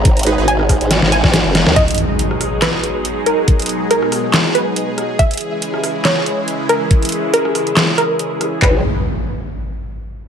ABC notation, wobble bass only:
X:1
M:4/4
L:1/16
Q:"Swing 16ths" 1/4=140
K:G#m
V:1 name="Wobble bass" clef=bass
G,,,3 G,,,4 G,,,2 G,,,2 G,,,2 F,,,2 D,, | z16 | z16 | z16 |
z16 | G,,,2 z12 z2 |]